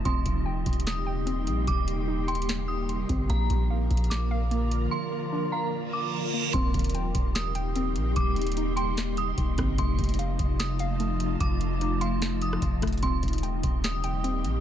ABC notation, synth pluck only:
X:1
M:4/4
L:1/8
Q:1/4=148
K:Eblyd
V:1 name="Synth pluck"
C2 g3 g C2- | C2 E g4 C | B,2 f3 f B,2- | B,2 D f4 B, |
C2 g3 g C2- | C2 E g4 C | A,2 f3 f A,2- | A,2 E f4 A, |
C2 g3 g C2 |]